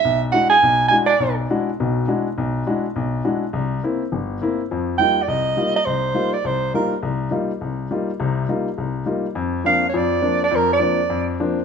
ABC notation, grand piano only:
X:1
M:4/4
L:1/8
Q:"Swing" 1/4=206
K:Emix
V:1 name="Grand piano"
B,,,2 [G,DEF] z B,,,2 [G,DEF] z | B,,,2 [G,DEF] z [B,,,B,,]2 [G,DEF] z | B,,,2 [G,DEF] z B,,,2 [G,DEF] z | =C,,2 [_B,=CE] z =G,,,2 [B,CE] z |
[K:Bb] [F,,F,]2 [G,B,EF] z C,,2 [G,B,EF] z | C,,2 [G,B,EF] z C,,2 [G,B,EF] z | C,,2 [G,B,EF] z C,,2 [G,B,EF] z | [C,,C,]2 [G,B,EF] z C,,2 [G,B,EF] z |
F,,2 [F,B,CD] z [F,,F,]2 [F,B,CD] z | [F,,F,]2 [F,B,CD] z F,,2 [F,B,CD] z |]